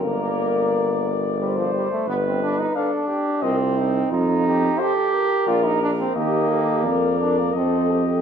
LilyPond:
<<
  \new Staff \with { instrumentName = "Trumpet" } { \time 3/4 \key g \minor \tempo 4 = 88 d''2. | r4 f''4 ees''4 | r4 c''4 d''4 | ees''4 d''4 ees''4 | }
  \new Staff \with { instrumentName = "French horn" } { \time 3/4 \key g \minor bes'2. | r4 b'4 bes'4 | r4 a'4 bes'4 | g'8 a'8 bes'4 a'4 | }
  \new Staff \with { instrumentName = "Flugelhorn" } { \time 3/4 \key g \minor bes'4. r8 c''4 | b'4 a'8 g'8 f'8 ees'8 | f'8 g'8 a'8 bes'4. | g'8 g'8 bes'4 a'8 g'8 | }
  \new Staff \with { instrumentName = "Trombone" } { \time 3/4 \key g \minor bes4. r8 g16 f16 g16 a16 | b16 c'16 d'16 ees'16 d'4 c'4 | ees'4 g'4 f'16 ees'16 d'16 c'16 | bes4. d'16 bes16 c'8. r16 | }
  \new Staff \with { instrumentName = "Tuba" } { \clef bass \time 3/4 \key g \minor g,,2. | g,,4 r4 c,4 | f,4 r4 bes,,4 | ees,4 f,4 f,4 | }
>>